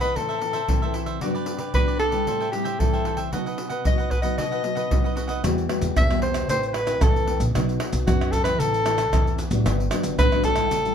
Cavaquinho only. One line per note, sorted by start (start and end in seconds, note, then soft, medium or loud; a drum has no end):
0.00 0.14 B4 soft
0.00 0.14 D#5 medium
0.00 0.13 F#5 medium
0.15 0.27 E4 soft
0.15 0.28 A4 soft
0.15 0.28 C5 soft
0.15 0.27 E5 soft
0.29 0.40 A4 soft
0.29 0.40 C5 medium
0.29 0.40 E5 medium
0.41 muted cavaquinho stroke soft
0.53 0.80 A4 soft
0.53 0.80 C5 medium
0.53 0.79 E5 medium
0.82 0.93 A4 medium
0.82 0.94 C5 medium
0.82 0.94 E5 medium
0.94 1.07 E4 soft
0.94 1.07 A4 soft
0.94 1.06 C5 soft
0.94 1.05 E5 soft
1.06 1.20 A4 soft
1.06 1.20 C5 medium
1.06 1.19 E5 medium
1.21 1.33 F#4 soft
1.21 1.34 G4 soft
1.21 1.34 B4 soft
1.21 1.33 D5 medium
1.35 1.59 G4 soft
1.35 1.58 B4 medium
1.35 1.57 D5 medium
1.58 1.73 G4 soft
1.58 1.72 B4 medium
1.58 1.72 D5 medium
1.74 1.86 F#4 soft
1.74 1.87 G4 soft
1.74 1.87 B4 soft
1.74 1.87 D5 soft
1.88 2.12 G4 soft
1.88 2.11 B4 soft
1.88 2.10 D5 medium
2.11 2.26 G4 medium
2.11 2.25 B4 medium
2.11 2.25 D5 medium
2.27 2.39 A4 soft
2.27 2.39 C5 soft
2.27 2.40 E5 medium
2.27 2.39 G5 soft
2.40 2.51 C5 soft
2.40 2.52 E5 medium
2.40 2.52 G5 medium
2.52 muted cavaquinho stroke soft
2.64 2.92 C5 soft
2.64 2.91 E5 soft
2.64 2.91 G5 medium
2.93 3.04 C5 soft
2.93 3.05 E5 medium
2.93 3.05 G5 medium
3.05 3.18 A4 soft
3.05 3.17 C5 soft
3.05 3.17 E5 soft
3.05 3.15 G5 medium
3.17 3.31 C5 soft
3.17 3.31 E5 medium
3.17 3.30 G5 medium
3.32 3.44 F#4 soft
3.32 3.45 B4 soft
3.32 3.45 D#5 soft
3.32 3.45 F#5 medium
3.46 3.70 B4 soft
3.46 3.69 D#5 medium
3.46 3.68 F#5 medium
3.69 3.84 B4 soft
3.69 3.84 D#5 medium
3.69 3.83 F#5 medium
3.84 3.97 F#4 soft
3.84 3.98 B4 soft
3.84 3.98 D#5 soft
3.84 3.97 F#5 soft
3.98 4.23 B4 soft
3.98 4.22 D#5 soft
3.98 4.21 F#5 medium
4.22 4.37 B4 medium
4.22 4.36 D#5 medium
4.22 4.36 F#5 medium
4.38 4.50 F#4 soft
4.38 4.50 B4 soft
4.38 4.51 D#5 soft
4.38 4.50 F#5 medium
4.52 4.63 B4 soft
4.52 4.63 D#5 medium
4.52 4.63 F#5 medium
4.63 muted cavaquinho stroke soft
4.75 5.03 B4 medium
4.75 5.03 D#5 medium
4.75 5.02 F#5 medium
5.04 5.15 B4 soft
5.04 5.16 D#5 medium
5.04 5.16 F#5 medium
5.16 5.29 F#4 soft
5.16 5.28 B4 soft
5.16 5.28 D#5 soft
5.16 5.26 F#5 soft
5.28 5.42 B4 soft
5.28 5.42 D#5 medium
5.28 5.41 F#5 medium